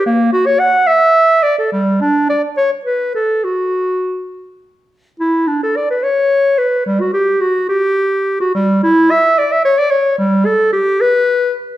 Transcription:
X:1
M:6/8
L:1/16
Q:3/8=72
K:F#phr
V:1 name="Clarinet"
_B,2 F c f2 e4 d A | G,2 D2 d2 c2 B2 A2 | F6 z6 | [K:Glyd] E2 D A d B c4 B2 |
G, F G2 F2 G4- G F | G,2 E2 e2 d e c d c2 | G,2 A2 G2 B4 z2 |]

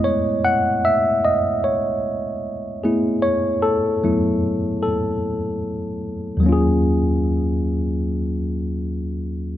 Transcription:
X:1
M:4/4
L:1/8
Q:"Swing 16ths" 1/4=75
K:Ebm
V:1 name="Tine electric piano"
d g _f e d3 z | d =A3 A3 z | [E,,G,B,DFA]8 |]
V:2 name="Tine electric piano"
[A,=A,C_F] z6 [A,CF_A]- | [=A,C_F_A]2 [G,=A,CF] z4 z | z8 |]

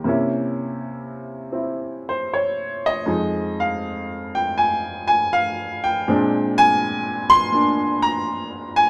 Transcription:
X:1
M:4/4
L:1/8
Q:"Swing" 1/4=80
K:Cphr
V:1 name="Upright piano"
z4 z c d e- | e f2 g a a f g- | g a2 c'2 b2 a |]
V:2 name="Upright piano"
[C,B,D=E]4 [CE]4 | [F,,F,A,E]8 | [B,,A,C=D]4 [B,D]4 |]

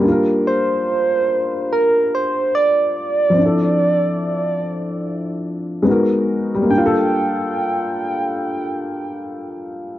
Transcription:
X:1
M:4/4
L:1/8
Q:"Swing 16ths" 1/4=72
K:Gdor
V:1 name="Soft synth lead"
z c3 B c d2- | d6 z2 | g8 |]
V:2 name="Upright piano"
[G,B,DFB]8 | [F,CDEA]6 [_A,_C_E_GB]2 | [G,B,DFA]8 |]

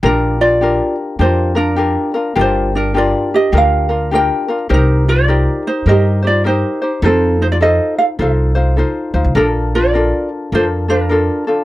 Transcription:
X:1
M:4/4
L:1/16
Q:"Swing" 1/4=103
K:Bb
V:1 name="Ukulele"
[DB]2 [Fd]4 z2 [Fc]2 [DB]4 z2 | [Fc]2 [DB]2 [Fd]2 [Ge]2 [Bf]4 [Bg]3 z | [EB]2 [Fd]4 [Ec]2 [Ge]2 [Fd]2 [Ec]3 z | [CA]2 [Ec] [Fd] [Ae]2 [Af]2 [Ae]4 z4 |
[DB]2 [Fd]4 z2 [Fc]2 [DB]4 z2 |]
V:2 name="Ukulele"
[DFGB]4 [DFGB]4 [DFGB]2 [DFB]2 [DFGB]2 [DFB]2 | [DFGB]4 [DFGB]4 [DFGB]2 [DFB]2 [DFGB]2 [DFB]2 | [EGBc]4 [EGBc]4 [EGBc]2 [EGc]2 [EGBc]2 [EGc]2 | [EFAc]4 [EFAc]4 [EFAc]2 [EFc]2 [EFAc]2 [EFc]2 |
[DFAB]4 [DFAB]4 [DFAB]2 [DFA]2 [DFAB]2 [DFA]2 |]
V:3 name="Upright bass" clef=bass
B,,,8 F,,8 | G,,,8 D,,8 | C,,8 G,,8 | F,,8 C,,6 D,, C,, |
B,,,8 F,,8 |]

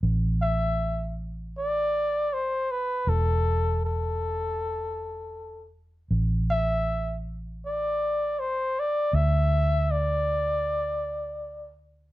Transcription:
X:1
M:4/4
L:1/8
Q:1/4=79
K:Am
V:1 name="Flugelhorn"
z e2 z d2 c B | A2 A4- A z | z e2 z d2 c d | e2 d4- d z |]
V:2 name="Fingered electric bass" clef=bass
A,,,8 | E,,,8 | A,,,8 | D,,8 |]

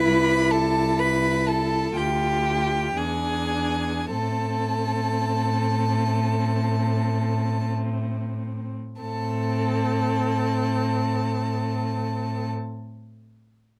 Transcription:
X:1
M:4/4
L:1/8
Q:1/4=50
K:Am
V:1 name="Violin"
b a b a g2 ^g2 | a6 z2 | a8 |]
V:2 name="Violin"
B A B A G2 ^G2 | A6 z2 | A8 |]
V:3 name="Viola"
E4 F2 D2 | C8 | C8 |]
V:4 name="Cello" clef=bass
C,,4 D,,2 E,,2 | A,,8 | A,,8 |]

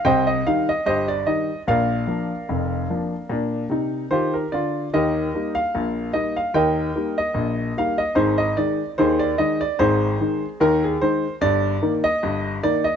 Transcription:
X:1
M:2/4
L:1/16
Q:"Swing 16ths" 1/4=74
K:Eb
V:1 name="Grand piano"
[ceg] e f e [Gce] d e2 | [Bdf]8- | [Bdf]4 [Fc] B d2 | [GBe]3 f3 e f |
[Beg]3 e3 f e | [EAc] e d2 [EAc] d e d | [EAc]4 [EB] A c2 | d3 e3 d e |]
V:2 name="Grand piano" clef=bass
[C,,C,]2 [E,G,E]2 [G,,,G,,]2 [E,G,E]2 | [B,,,B,,]2 [F,B,D]2 [F,,,F,,]2 [F,B,D]2 | [B,,D]2 [C,E]2 [E,G]2 [D,F]2 | [E,,E,]2 [G,B,E]2 [B,,,B,,]2 [G,B,E]2 |
[E,,E,]2 [G,B,E]2 [B,,,B,,]2 [G,B,E]2 | [A,,,A,,]2 [E,A,E]2 [E,,E,]2 [E,A,E]2 | [A,,,A,,]2 [E,A,E]2 [E,,E,]2 [E,A,E]2 | [G,,,G,,]2 [E,B,E]2 [G,,,G,,]2 [E,B,E]2 |]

